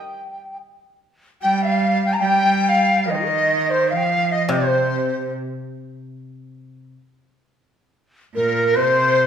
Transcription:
Already playing: G3 D#4 G4 A#4 D#5 G5
1.41 G3 G5
1.56 G5
1.62 F5
2.05 G5
2.12 A#5
2.17 G5
2.21 G3
2.69 F5
3.02 F5
3.07 D#3 A#4 D#5
3.12 D#4 C5
3.18 F4
3.22 G4 A#4
3.27 C5 D#5
3.69 C5
3.90 F3 F5
3.97 G5
4.04 F5
4.32 D#5
4.45 C3 D#5
4.52 C3 C5
8.35 A#2 A#4
8.74 C3 C5

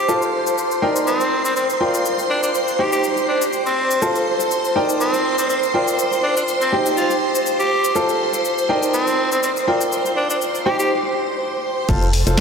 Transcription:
Already playing: G4 C5 C6
0.08 F4 A4 C5 A5, shaker
0.22 shaker
0.47 shaker
0.58 shaker
0.71 shaker
0.82 D#4 A#4 D5 G5
0.96 shaker
1.07 C4, shaker
1.20 shaker
1.45 C4, shaker
1.56 C4, shaker
1.70 shaker
1.81 F4 A#4 D5 G5
1.94 shaker
2.05 shaker
2.19 shaker
2.30 D4
2.43 D4, shaker
2.54 shaker
2.68 shaker
2.79 D#4 G4 C5 G5
2.92 G4, shaker
3.04 shaker
3.17 shaker
3.28 D4
3.42 shaker
3.53 shaker
3.66 C4, shaker
3.91 shaker
4.02 F4 A4 C5 A5, shaker
4.15 shaker
4.40 shaker
4.51 shaker
4.65 shaker
4.76 D#4 A#4 D5 G5
4.89 shaker
5.00 C4, shaker
5.14 shaker
5.38 C4, shaker
5.50 C4, shaker
5.63 shaker
5.74 F4 A#4 D5 G5
5.88 shaker
5.99 shaker
6.12 shaker
6.23 D4
6.37 D4, shaker
6.48 shaker
6.61 C4, shaker
6.72 D#4 G4 C5 G5
6.86 shaker
6.97 F4, shaker
7.11 shaker
7.35 shaker
7.46 shaker
7.60 G4, shaker
7.84 shaker
7.95 F4 A4 C5 A5, shaker
8.09 shaker
8.33 shaker
8.45 shaker
8.58 shaker
8.69 D#4 A#4 D5 G5
8.83 shaker
8.94 C4, shaker
9.07 shaker
9.32 C4, shaker
9.43 C4, shaker
9.56 shaker
9.67 F4 A#4 D5 G5
9.81 shaker
9.92 shaker
10.06 shaker
10.17 D4
10.30 D4, shaker
10.41 shaker
10.55 shaker
10.66 D#4 G4 C5 G5
10.79 G4, shaker
11.89 F1 F4 A4 C5 A5, kick, closed hi-hat, crash, shaker
12.02 closed hi-hat, shaker
12.13 closed hi-hat, open hi-hat
12.27 F1 F4 A4 C5 A5, closed hi-hat, shaker
12.37 snare

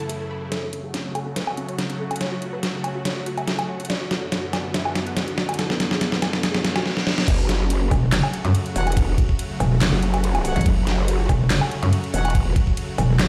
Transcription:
Already playing: F#2 C#3 E3 A3 E4
0.09 A4, closed hi-hat
0.21 A4
0.31 B5
0.42 A4
0.52 C#3 F#3 A3 F#4 A4, snare, closed hi-hat, riser
0.63 C#4
0.73 C#4, closed hi-hat
0.84 G#4
0.94 C#4, snare, closed hi-hat
1.05 C#4
1.15 A4, closed hi-hat, low woodblock
1.26 C#4
1.36 B4, snare, closed hi-hat
1.47 C#4, low woodblock
1.57 C#4, closed hi-hat
1.69 C#5, closed hi-hat
1.78 C#4, snare, closed hi-hat
1.90 C#4, closed hi-hat
2.00 A4
2.11 C#4, closed hi-hat, low woodblock
2.16 closed hi-hat
2.21 C#5, snare, closed hi-hat
2.32 F#4
2.42 F#4, closed hi-hat
2.53 B4
2.63 F#4, snare, closed hi-hat
2.74 F#4
2.84 C#5, closed hi-hat, low woodblock
2.95 F#4
3.05 C#5, snare, closed hi-hat
3.16 F#4
3.26 F#4, closed hi-hat
3.38 E5, closed hi-hat, low woodblock
3.48 F#4, snare, closed hi-hat
3.59 F#4, closed hi-hat, low woodblock
3.69 C#5
3.80 F#4, closed hi-hat
3.85 closed hi-hat
3.90 F#2 D3 B3 D5, snare, closed hi-hat
4.01 F#4
4.11 F#4, snare, closed hi-hat
4.22 C#5
4.32 F#4, snare, closed hi-hat
4.43 F#4
4.53 D5, snare, closed hi-hat, low woodblock
4.64 F#4
4.74 E5, snare, closed hi-hat
4.85 F#4, low woodblock
4.95 F#4, snare, closed hi-hat
5.07 F#5, closed hi-hat
5.17 F#4, snare, closed hi-hat
5.28 F#4, closed hi-hat
5.38 D5, snare
5.49 F#4, closed hi-hat, low woodblock
5.54 closed hi-hat
5.59 A4, snare, closed hi-hat
5.70 B3, snare
5.80 B3, snare, closed hi-hat
5.91 G#4, snare
6.01 B3, snare, closed hi-hat
6.12 B3, snare
6.22 A4, snare, closed hi-hat, low woodblock
6.33 B3, snare
6.43 G#4, snare, closed hi-hat, reverse cymbal
6.54 B3, snare
6.64 B3, snare, closed hi-hat
6.76 F#4, snare, closed hi-hat, low woodblock
6.86 B3, snare
6.97 B3, snare
7.07 D4, snare
7.18 B3, snare
7.28 F#1 C#3 F#3 A3 F#4, kick, closed hi-hat, crash
7.49 snare, closed hi-hat
7.70 closed hi-hat, crash
7.91 E1, kick, open hi-hat, low woodblock
8.12 F#1, snare, clap, closed hi-hat, crash
8.24 low woodblock
8.34 closed hi-hat
8.45 F#2, closed hi-hat
8.55 closed hi-hat, crash
8.66 closed hi-hat
8.76 E1 F#4 C#5 F#5, open hi-hat
8.87 closed hi-hat, low woodblock
8.92 closed hi-hat
8.97 kick, closed hi-hat, crash
9.18 kick, closed hi-hat
9.29 kick
9.39 closed hi-hat, crash
9.60 E1, open hi-hat, low woodblock
9.81 F#1, snare, clap, closed hi-hat, crash
9.92 F#1
10.03 closed hi-hat
10.14 closed hi-hat, low woodblock
10.24 closed hi-hat, crash
10.35 closed hi-hat, low woodblock
10.45 F#4 C#5 F#5, open hi-hat
10.56 A1, closed hi-hat
10.61 closed hi-hat
10.66 F#1, kick, closed hi-hat, crash
10.87 snare, closed hi-hat
11.08 closed hi-hat, crash
11.29 E1, kick, open hi-hat, low woodblock
11.50 F#1, snare, clap, closed hi-hat, crash
11.61 low woodblock
11.71 closed hi-hat
11.83 F#2, closed hi-hat
11.93 closed hi-hat, crash
12.04 closed hi-hat
12.14 E1 F#4 C#5 F#5, open hi-hat
12.25 closed hi-hat, low woodblock
12.30 closed hi-hat
12.35 kick, closed hi-hat, crash
12.56 kick, closed hi-hat
12.67 kick
12.77 closed hi-hat, crash
12.98 E1, open hi-hat, low woodblock
13.19 F#1, snare, clap, closed hi-hat, crash

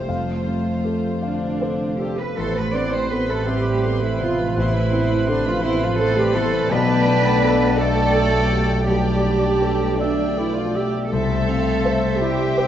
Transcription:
Already playing: C3 G3 C4 G4 C5 E5 G5
0.07 F1 F2 F3 A3 F4 F5
0.46 C4 F4
0.84 G4 A4
1.22 D3 D4 F4 F5
1.60 C4 C5
1.99 G3 G4 A4
2.18 B3 B4
2.37 A1 A2 A3 B3 A4 B4 C5 C6
2.55 A3 B3 B4 B5
2.73 B3 C4 D4 C5 D5 C6
2.92 A3 C4 B4 C5 B5
3.10 B3 A4 B4 C5 B5 C6
3.28 A3 A4 B5
3.32 B4
3.45 G3 B3 C4 G4 E5 C6
3.49 C5
3.64 A3 B4 B5
3.83 B3 A4 C5 C6
4.01 E3 A3 E4 B4 B5
4.19 C3 F3 B3 F4 C5 E5 C6
4.38 A3 B4 B5
4.56 A1 A2 E3 B3 E4 B4 C5 C6
4.74 A3 B4 B5
4.91 B3 C4 C5 C6
5.09 A3 B4 B5
5.27 D3 B3 D4 A4 C5 C6
5.45 F3 A3 F4 B4 B5
5.63 E3 B3 C4 E4 B4 C5 C6
5.81 F3 A3 F4 B4 B5
5.99 A3 B3 E4 A4 C5 C6
6.17 G3 A3 G4 B4 B5
6.34 E3 A3 B3 E4 A4 C5 C6
6.52 A3 B4 B5
6.70 B1 B2 A3 B3 B4 D5 G5 A5
7.06 D4
7.42 A4
7.77 A3 A4 D5 G5 A5
8.15 G4 A4
8.52 B3 G4
8.87 B1 B2 G3 A3 G4 D5 G5 A5
9.25 D4
9.62 A4
9.99 D3 A3 D4 D5 E5 G5
10.37 E3 E4 G4 A4 D5
10.57 F3 F4
10.75 G3 B3 G4 E5
11.11 C2 C3 A3 C4 A4 C5 E5
11.49 C4 F5
11.85 C5 E5
12.21 G3 C4 E4 G4 G5
12.58 C4 C5

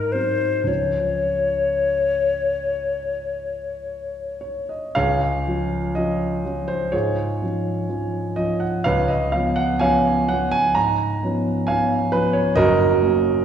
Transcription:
Already playing: G#2 A#4
0.12 F#3 C4 D#4 C5
0.64 C#2 F3 C#4 F4 C#5
4.41 C#5
4.69 D#5
4.95 C#2 G#4 C#5 F5
5.47 F3 C#4 F4
5.95 F3 C#4 F4 D#5
6.44 F3 C#4 F4
6.68 C5
6.92 G#2 F4 G#4 C#5
7.42 F3 C#4 F4
7.89 F3 C#4 F4
8.36 F3 C#4 F4 D#5
8.60 F#5
8.84 C#2 B4 C#5 F5
9.08 D#5
9.32 F3 B3 C#4 F5
9.56 F#5
9.79 F3 B3 C#4 C#5 F5 G#5
10.29 F3 B3 C#4 F#5
10.51 G#5
10.75 G#2 A#5
11.23 F3 B3 C#4
11.67 F3 B3 C#4 C#5 F5 G#5
12.12 F3 B3 C#4 B4
12.33 C#5
12.56 F#1 F#2 F#4 A#4 D#5
13.02 F#3 A#3 C#4

